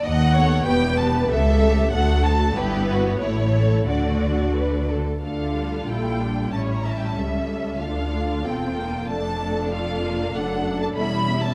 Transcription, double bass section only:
\new Staff \with { instrumentName = "Double bass section" } { \clef bass \time 2/4 \key d \major \tempo 4 = 94 dis,4 e,,4 | cis,4 d,4 | g,,4 a,,4 | d,4. r8 |
\key d \minor d,4 bes,,4 | a,,4 cis,4 | d,4 e,,4 | f,,2 |
\key d \major fis,,4 e,,4 | }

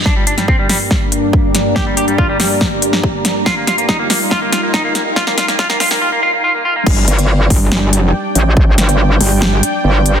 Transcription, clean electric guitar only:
\new Staff \with { instrumentName = "Clean electric guitar" } { \time 4/4 \key g \minor \tempo 4 = 141 << { d'8 d'8 c'8 r2 r8 | g'8 g'8 f'8 r2 r8 | f'8 f'8 ees'8 r8 f'8 f'8 ees'8 r8 | f'8 f'8 f'8 f'8 f'8 f'8 f'8 f'8 |
r1 | r1 | } \\ { r16 g16 r16 g16 r16 g16 g16 r2 r16 | r16 g16 r16 g16 r16 g16 g16 r2 r16 | r16 bes16 r16 bes16 r16 bes16 bes16 r8 bes16 r16 bes16 r16 bes16 bes16 r16 | r16 bes16 r16 bes16 r16 bes16 r16 bes16 r16 bes16 r16 bes16 r16 bes16 r16 bes16 |
r1 | r1 | } >> }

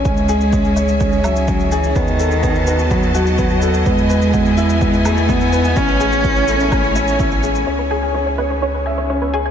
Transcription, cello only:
\new Staff \with { instrumentName = "Cello" } { \clef bass \time 4/4 \key cis \minor \tempo 4 = 126 gis2 gis8 fis4 e8 | dis2 fis8 fis4. | gis2 gis8 a8 b4 | cis'2. r4 |
r1 | }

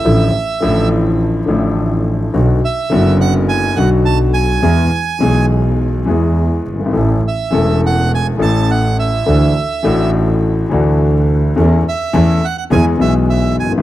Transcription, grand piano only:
\new Staff \with { instrumentName = "Grand piano" } { \clef bass \time 4/4 \key a \major \tempo 4 = 104 << { <a,, a, d f a e'>8 r8 <a,, a, d f a e'>4. <a,, a, d f a e'>4. | <b,, b, d fis b fis'>8 r8 <fis,, fis, d fis b fis'>4. <b,, b, d fis b fis'>4. | <e, e gis b gis'>8 r8 <b,, b, e gis b gis'>4. <e, e gis b gis'>4. | <a,, a, e a cis' a'>8 r8 <e,, e, e a cis' a'>4. <a,, a, e a cis' a'>4. |
<d, d e a d' fis'>8 r8 <a,, a, e a d' fis'>4. <d, d e a d' fis'>4. | <e, e a cis' a'>8 r8 <e, e a cis' a'>8 r8 <e, e gis b gis'>8 <b,, b, e gis b gis'>4. | } \\ { r1 | r1 | r2. r8 r32 fis,,32 g,,32 gis,,32 | r1 |
r1 | r2. r8 r32 fis,,32 g,,32 gis,,32 | } >> }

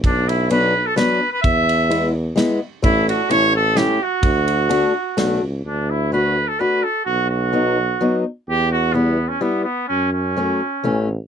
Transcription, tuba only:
\new Staff \with { instrumentName = "Tuba" } { \clef bass \time 3/4 \key d \major \tempo 4 = 128 b,,2. | e,2. | a,,4 a,,2 | d,2 b,,8 cis,8 |
d,2. | b,,2. | e,2. | fis,2 a,,4 | }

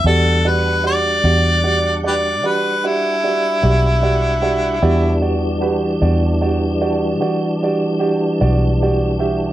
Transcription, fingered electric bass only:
\new Staff \with { instrumentName = "Fingered electric bass" } { \clef bass \time 12/8 \key e \minor \tempo 4. = 50 e,4. e,4. e4. b,,4. | e,4. e,4. e4. b,,4. | }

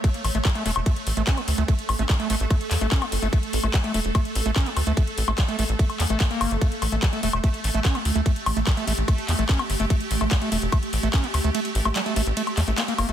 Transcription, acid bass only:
\new Staff \with { instrumentName = "Acid bass" } { \time 4/4 \tempo 4 = 146 a16 r8 a16 g16 a16 a16 r16 a16 r8 a16 cis'16 a16 r16 a16 | a16 r8 a16 g16 a16 a16 r16 a16 r8 a16 cis'16 a16 r16 a16 | a16 r8 a16 g16 a16 a16 r16 a16 r8 a16 cis'16 a16 r16 a16 | a16 r8 a16 g16 a16 a16 r16 a16 r8 a16 a16 bes8 a16 |
a16 r8 a16 g16 a16 a16 r16 a16 r8 a16 cis'16 a16 r16 a16 | a16 r8 a16 g16 a16 a16 r16 a16 r8 a16 cis'16 a16 r16 a16 | a16 r8 a16 g16 a16 a16 r16 a16 r8 a16 cis'16 a16 r16 a16 | a16 r8 a16 g16 a16 a16 r16 a16 r16 a16 a16 bes16 bes16 bes16 a16 | }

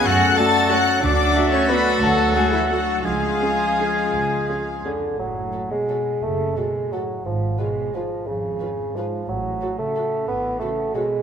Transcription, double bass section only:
\new Staff \with { instrumentName = "Double bass section" } { \clef bass \time 3/4 \key fis \minor \tempo 4 = 177 fis,4 r2 | d,4 r2 | d,4 r2 | cis,4 r2 |
cis,4 r2 | fis,,4 r2 | fis,,4 r2 | gis,,4 r2 |
gis,,4 r2 | a,,4 r2 | a,,4 r2 | }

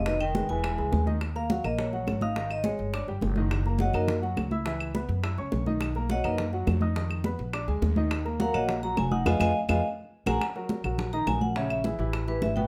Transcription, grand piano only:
\new Staff \with { instrumentName = "Grand piano" } { \time 4/4 \key ees \minor \tempo 4 = 209 <ees ees' ees''>4 <aes aes' ces''>8 <aes aes' ces''>4 <gis gis' b'>4 <ees ees' ees''>8 | r8 <bes bes' bes''>8 <ges ges' ges''>8 <bes bes' bes''>4 <ges ges' ges''>4 <ees' ees'' ees'''>8 | <ees ees' ees''>4 <aes aes' aes''>4 <d' d'' d'''>8 <g g' g''>4 <ees ees' ees''>8~ | <ees ees' ees''>8 <bes bes' bes''>8 <ges ges' ges''>8 <bes bes' bes''>4 <ges ges' ges''>4 <fes' fes'' fes'''>8 |
<fes fes' fes''>4 <ces' ces'' ces'''>4 <fes' fes'' fes'''>8 <des' des'' des'''>4 <ees ees' ees''>8~ | <ees ees' ees''>8 <ais ais' ais''>8 <fis fis' fis''>8 <ais ais' ais''>4 <fis fis' fis''>4 <dis' dis'' dis'''>8 | <dis dis' dis''>4 <b b' b''>4 <d' d'' d'''>8 <aes aes' aes''>4 <ees ees' ees''>8~ | <ees ees' ees''>8 <bes bes' bes''>8 <ges ges' ges''>8 <bes bes' bes''>4 <ges ges' ges''>4 <ees' ees'' ees'''>8 |
<f' aes' ces''>8 <f' aes' ces''>8 r8 <f' aes' ces''>8 r4. <ges' aes' bes'>8 | r8 <ges ges' bes'>4 <ges ges' bes'>4 <ees ees' ees''>8 <ges ges' bes'>4 | <des des' des''>4 <fes fes' aes'>8 <fes fes' g'>4 <e e' g'>4 <b, b b'>8 | }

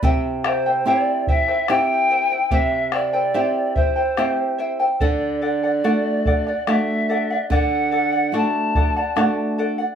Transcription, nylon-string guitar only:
\new Staff \with { instrumentName = "Nylon-string guitar" } { \time 3/4 \key c \lydian \tempo 4 = 72 c4 <c' e' g'>4 <c' e' g'>4 | c4 <c' e' g'>4 <c' e' g'>4 | d4 <a d' fis'>4 <a d' fis'>4 | d4 <a d' fis'>4 <a d' fis'>4 | }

